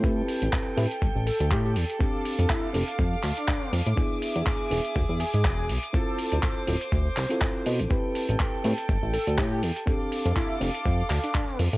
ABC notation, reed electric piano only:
X:1
M:4/4
L:1/16
Q:"Swing 16ths" 1/4=122
K:Am
V:1 name="Reed electric piano"
[CEGB]6 [CEGB] z8 z | [CDGA]6 [CDGA] z8 z | [B,DE^G]6 [B,DEG] z8 z | [CEFA]6 [CEFA] z4 [CEFA]4- [CEFA] |
[CEGB]6 [CEGB] z8 z | [CDGA]6 [CDGA] z8 z |]